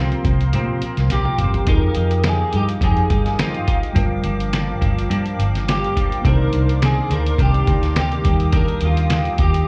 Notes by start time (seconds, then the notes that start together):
Already playing: C2 C3 F3 G#3 A#3 C4 F4 A#4 F5 A#5 C6
0.00 C4
0.12 closed hi-hat
0.24 C2 F3 A#3 C4, kick, closed hi-hat
0.41 closed hi-hat
0.53 A#2 C3 F3 A#3 C4, closed hi-hat
0.81 F3 A#3 C4, muted fingered electric bass stroke, closed hi-hat
0.97 C2, snare, closed hi-hat
1.10 A#1 C3 F3 A#3 C4 G4, snare, closed hi-hat
1.25 high tom
1.38 G1 F3 A#3 C4, closed hi-hat, mid tom
1.54 closed hi-hat, floor tom
1.65 F2 F3 G#3 D#4 F4 G5 D#6, kick, closed hi-hat
1.69 G4 G#4 A#4
1.95 F2 G#3 D#4 G4, closed hi-hat
2.11 closed hi-hat
2.24 F3 G#3 D#4 G4, snare, closed hi-hat
2.28 G#4
2.53 G2 G#3 D#4 G4, closed hi-hat
2.69 closed hi-hat
2.81 F2 F3 G#3 D#4 G4 G#4, kick, closed hi-hat
2.97 closed hi-hat
3.10 G2 G#3 D#4 G4, kick, closed hi-hat
3.26 snare, closed hi-hat
3.38 F3 G#3 D#4 F4 G4, snare, closed hi-hat
3.54 closed hi-hat
3.67 G#3 D#4 G4, kick, closed hi-hat
3.83 closed hi-hat
3.93 G1 G2 F3 G3 A#3 D4 F4 A#4 D6, kick, closed hi-hat
3.98 A#4
4.24 G1 F3 A#3 D4, closed hi-hat
4.40 closed hi-hat
4.53 G2 F3 A#3 D4, snare, closed hi-hat
4.81 G1 F3 A#3 D4, kick, closed hi-hat
4.98 closed hi-hat
5.09 G2 F3 A#3 D4, closed hi-hat
5.26 closed hi-hat
5.39 G1 F3 A#3 D4, closed hi-hat
5.55 snare, closed hi-hat
5.67 G2 F3 A#3 D4 G4, snare, closed hi-hat
5.84 closed hi-hat
5.95 F3 A#3 D4, kick, closed hi-hat
6.12 closed hi-hat
6.22 C2 C3 D#3 A#3 D4 D#4, kick, closed hi-hat
6.26 A#4 C5 D5 C6
6.52 C2 D#3 A#3 D4, closed hi-hat
6.69 closed hi-hat
6.81 C3 D#3 A#3 D4 G#4, snare, closed hi-hat
7.10 D2 D#3 A#3 D4 A#4, closed hi-hat
7.26 closed hi-hat
7.38 C2 C3 D#3 A#3 D4 G4, kick, closed hi-hat
7.54 closed hi-hat
7.67 D2 D#3 A#3 D4, kick, closed hi-hat
7.83 snare, closed hi-hat
7.96 C3 D#3 A#3 D4, snare, closed hi-hat
8.00 G4
8.12 closed hi-hat
8.22 D#2 G3 A#3 D4 D#4 G4 D#6, kick, closed hi-hat
8.26 A#4 G5
8.40 closed hi-hat
8.52 D#3 A#3 D4 G4 A#4, kick, closed hi-hat
8.68 closed hi-hat
8.81 D#2 A#3 D4 G4, closed hi-hat
8.85 F4
8.97 closed hi-hat
9.09 D#3 A#3 D4 G4, snare, closed hi-hat
9.25 closed hi-hat
9.38 D#2 A#3 D4 G4, kick, closed hi-hat
9.54 closed hi-hat